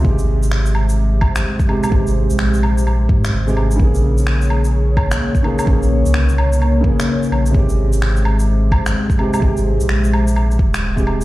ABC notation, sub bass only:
X:1
M:4/4
L:1/16
Q:"Swing 16ths" 1/4=128
K:Ab
V:1 name="Sub bass" clef=bass
A,,,12 z4 | A,,,3 B,,,6- B,,, A,,2 A,,,4 | B,,,12 z4 | B,,,3 C,,6- C,, z4 B,,,2 |
A,,,12 z4 | A,,,3 B,,,6- B,,, E,,,6 |]